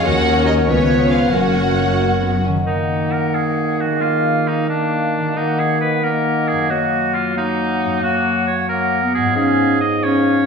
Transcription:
Already playing: C#4 C#5 C#6
0.05 D#2 D#3 F#3 A#3 C#4 F#4 A#4 F#5
0.26 D#4
0.46 D#4 C#5 D#5
0.67 C#2 C#3 F3 B3 C#4 B4 C#5
0.91 B3
1.11 F4 C#5 F5
1.32 F#1 F#2 F#3 A#3 C#4 F#4 A#4 C#5 F#5
1.56 A#3
1.78 C#5
1.99 A#3 F#5
2.21 B3 A#4
2.43 C#4 F#4
2.48 D#3
2.52 A#3
2.57 F#4
2.61 A#3 D#5 F#5
2.66 D#3 D#4
3.12 A#4
3.34 G#4
3.80 D#3 F#4
3.88 A#3
3.92 G#4
3.97 F5
4.01 A#3 F4 F5
4.48 D#4
4.69 A#3 D4 F5
5.18 D#3
5.22 A#3
5.27 F#4
5.31 D#5
5.36 D#3 A#3 D#4 F#5
5.59 G#4
5.81 B4
6.02 A#3 A#4 F#5
6.48 G#4
6.52 F#2
6.57 A#3
6.61 F#4
6.66 D#5
6.70 F#3 A#3 F#4 F#5
7.15 F4
7.36 A#3 D#4 F#5
7.85 F#2
7.89 A#3
7.94 F#4
7.98 A#3 C#5
8.03 F#4 F#5
8.47 C#5
8.68 A#3 A#4 F#5
9.03 B3
9.15 G#2 G#4
9.22 B3
9.27 F4
9.31 C#5
9.36 G#2 C#4 G#4 F5
9.80 D#5
10.03 C#4 C#5 F5

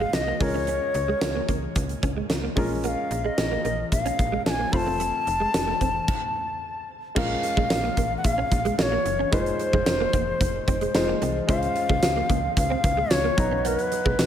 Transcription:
Already playing: G#3 D#4 F#4 C5 F5
0.00 G#3
0.13 C2 D#5, snare, closed hi-hat
0.27 A#3
0.40 C#2 G#3 C#4 F4 A#4 C#5, muted clean electric guitar stroke, kick, open hi-hat
0.54 C#4
0.67 C#4, closed hi-hat
0.94 C#2, muted clean electric guitar stroke, closed hi-hat
1.08 G#3
1.21 C#2, muted clean electric guitar stroke, snare, closed hi-hat
1.36 A#3
1.48 C#2 A#3, kick, closed hi-hat
1.76 C#2, muted clean electric guitar stroke, kick, closed hi-hat
1.89 closed hi-hat
2.03 C#2 C#4, kick, closed hi-hat
2.17 G#3
2.30 C#2, muted clean electric guitar stroke, snare, closed hi-hat
2.44 A#3
2.56 A#1 G#3 C#4 F4 A#4, kick, open hi-hat
2.84 A#3 F#5, closed hi-hat
2.88 F5
3.11 A#1, muted clean electric guitar stroke, closed hi-hat
3.25 G#3 D#5
3.38 A#1, muted clean electric guitar stroke, snare, closed hi-hat
3.52 A#3
3.65 A#1 A#3, closed hi-hat
3.92 A#1 F5, kick, closed hi-hat
4.06 C#4, closed hi-hat
4.19 A#1, muted clean electric guitar stroke, kick, closed hi-hat
4.32 G#3
4.46 A#1 G#5 A5, snare, closed hi-hat
4.59 A#3
4.72 F1 A3 C4 F4 C5 B5, muted clean electric guitar stroke, kick, open hi-hat
4.76 A5
4.86 C4
5.00 A3, closed hi-hat
5.27 F1, muted clean electric guitar stroke, closed hi-hat
5.40 G#3
5.54 F1, muted clean electric guitar stroke, snare, closed hi-hat
5.68 A3
5.81 F1 C4, kick, closed hi-hat
6.08 kick, crash
7.15 A#1 G#3 A#3 C#4 F4 A#4 F5, kick, crash
7.43 muted clean electric guitar stroke, closed hi-hat
7.57 A#1 G#3, kick
7.70 A#1, muted clean electric guitar stroke, snare, closed hi-hat
7.84 A#3
7.97 A#1 A#3, kick, closed hi-hat
8.18 F#5
8.24 A#1 F5, kick, closed hi-hat
8.38 C#4
8.52 A#1, muted clean electric guitar stroke, kick, closed hi-hat
8.65 G#3, closed hi-hat
8.78 A#1 C#5 D#5, snare, closed hi-hat
8.92 A#3
9.05 F#1, muted clean electric guitar stroke, closed hi-hat
9.19 C#4
9.31 F1 G#3 A#3 D#4 F4 C5, kick, closed hi-hat
9.46 closed hi-hat
9.59 muted clean electric guitar stroke, closed hi-hat
9.73 F1 G#3, kick
9.86 F1, muted clean electric guitar stroke, snare, closed hi-hat
10.00 A#3
10.13 F1 A#3, kick, closed hi-hat
10.41 F1, muted clean electric guitar stroke, kick, closed hi-hat
10.68 F1 C4, kick, closed hi-hat
10.81 G#3, closed hi-hat
10.94 F1 G#3 D#4 F4 C5, muted clean electric guitar stroke, snare, closed hi-hat
11.08 A#3
11.22 C2 C4, closed hi-hat
11.47 C#2 G#3 C#4 F4 C5 F5, kick, closed hi-hat
11.63 closed hi-hat
11.76 muted clean electric guitar stroke, closed hi-hat
11.89 C#2 G#3, kick
12.03 C#2, muted clean electric guitar stroke, snare, closed hi-hat, tambourine
12.16 A#3
12.30 C#2 A#3, kick, closed hi-hat
12.57 C#2 F5, kick, closed hi-hat
12.70 C4
12.84 C#2, muted clean electric guitar stroke, kick, closed hi-hat
12.97 G#3
13.10 C#2 C#5, snare, closed hi-hat, tambourine
13.24 A#3
13.37 B1 F#3 B3 D#4 A#5, muted clean electric guitar stroke, kick, closed hi-hat
13.51 C#4
13.58 C#5
13.65 B3 A#4, closed hi-hat
13.79 B4, closed hi-hat
13.92 muted clean electric guitar stroke, closed hi-hat
14.05 B1 G#3, kick
14.19 B1, muted clean electric guitar stroke, snare, closed hi-hat, tambourine

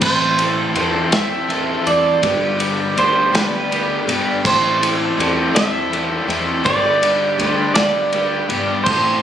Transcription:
0.01 A1 A2 E3 G3 C4 E4 G4 A4 C5 G5 C6, kick, crash
0.38 C4 E4 A4, ride
0.74 E2 E3 G3 C4 E4 G4 A4, ride
1.11 E2 A2 E3 G3 C4 E4 G4 A4 C5 E5, snare, ride
1.48 E3 C4 E4 A4, ride
1.84 E2 G3 C4 E4 G4 A4 D5, ride
2.21 G1 G2 D3 G3 B3 D4 G4 B4 D5 B5, kick, ride
2.59 G3 B3 D4 G4, ride
2.97 D2 G3 B3 D4 G4 C5, ride
3.33 D2 G2 D3 G3 B3 D4 G4 B4 D5, snare, ride
3.69 G3 B3 D4 G4, ride
4.07 G1 G3 B3 D4 G4, ride
4.44 A1 A2 E3 G3 C4 E4 G4 A4 C5 E5 A5, kick, crash
4.81 C4 E4 A4, ride
5.16 E2 E3 G3 C4 E4 G4 A4, ride
5.53 E2 A2 G3 C4 E4 G4 A4 C5 E5, snare, ride
5.90 E3 C4 E4 A4, ride
6.27 E2 C4 E4 G4 A4, ride
6.64 G1 G2 D3 G3 B3 D4 G4 B4 D5, kick, ride
7.02 G3 B3 D4 G4, ride
7.38 D2 G3 B3 D4 G4, ride
7.44 C5
7.74 D2 G2 D3 B3 D4 G4 B4 D5 F5, snare, ride
7.79 G3
8.13 G3 B3 D4 G4, ride
8.49 G1 G3 B3 D4 G4, ride
8.84 A1 A2 E3 G3 G4 C5 E5 A5, kick, crash
8.88 C4 E4 A4 C5

